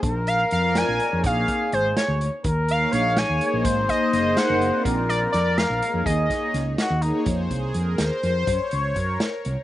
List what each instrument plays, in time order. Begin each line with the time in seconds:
0.03 fretless electric bass A#1, flugelhorn A#4, kick, closed hi-hat
0.27 analog synth lead F5 C7, closed hi-hat
0.51 fretless electric bass F2, analog synth pad C4 F4 A#4 D5, analog synth lead F5 C7, closed hi-hat
0.75 analog synth lead G#5 D#7, snare, closed hi-hat
0.88 fretless electric bass A#1
1.00 analog synth pad A#3 D#4 G#4 C#5, closed hi-hat
1.13 fretless electric bass F2
1.24 fretless electric bass A#1, analog synth pad A#3 D#4 G#4 C#5, flugelhorn G#4, analog synth lead F5 C7, kick, closed hi-hat
1.48 kick, closed hi-hat
1.72 fretless electric bass G#1, analog synth lead C5 G6, closed hi-hat
1.97 analog synth lead C#5 G#6, snare, closed hi-hat
2.08 fretless electric bass D2
2.21 closed hi-hat
2.44 fretless electric bass D#2, flugelhorn A#4, kick, closed hi-hat
2.68 analog synth pad A#3 D#4 G#4 C#5, analog synth lead F5 C7, closed hi-hat
2.92 fretless electric bass A#1, flugelhorn C#5, analog synth lead F5 C7, snare, closed hi-hat
3.17 analog synth lead G#5 D#7, snare, closed hi-hat
3.29 fretless electric bass D#2
3.41 analog synth pad A#3 D#4 G#4 C5, closed hi-hat
3.54 fretless electric bass A#1
3.64 fretless electric bass G#1, flugelhorn C5, kick, closed hi-hat
3.89 analog synth pad A#3 D#4 G#4 C5, analog synth lead D#5 A#6, kick, closed hi-hat
4.13 fretless electric bass F#1, analog synth lead D#5 A#6, snare, closed hi-hat
4.37 analog synth lead F#5 C#7, snare, closed hi-hat
4.50 fretless electric bass F#1
4.61 analog synth pad C4 F4 A#4 D5, closed hi-hat
4.84 fretless electric bass A#1, flugelhorn A#4, kick, closed hi-hat
5.09 analog synth pad C4 F4 A#4 D5, analog synth lead D5 A6, snare, closed hi-hat
5.32 fretless electric bass F2, analog synth lead D5 A6, snare, closed hi-hat
5.57 analog synth lead F5 C7, snare, closed hi-hat
5.70 fretless electric bass A#1
5.82 analog synth pad A#3 D#4 G#4 C#5, closed hi-hat
5.94 fretless electric bass F2
6.05 fretless electric bass D#2, flugelhorn G#4, analog synth lead D#5 A#6, kick, closed hi-hat
6.30 analog synth pad A#3 D#4 G#4 C#5, kick, snare, closed hi-hat
6.54 fretless electric bass C#2, snare, closed hi-hat
6.78 flugelhorn F#4, snare, closed hi-hat
6.90 fretless electric bass D#2
7.02 analog synth pad A#3 D#4 G#4 C#5, flugelhorn D#4, closed hi-hat
7.26 fretless electric bass F2, analog synth pad C5, kick, closed hi-hat
7.51 fretless electric bass C2, analog synth pad G#4, kick, closed hi-hat
7.74 fretless electric bass F2, analog synth pad A#4, closed hi-hat
7.97 fretless electric bass D#2, analog synth pad C5, snare, closed hi-hat
8.23 fretless electric bass F2, closed hi-hat
8.46 fretless electric bass F#2, analog synth pad C#5, kick, closed hi-hat
8.71 fretless electric bass C#2, closed hi-hat
8.95 fretless electric bass F#2, analog synth pad A#4, kick, closed hi-hat
9.20 snare, closed hi-hat
9.45 fretless electric bass C2, closed hi-hat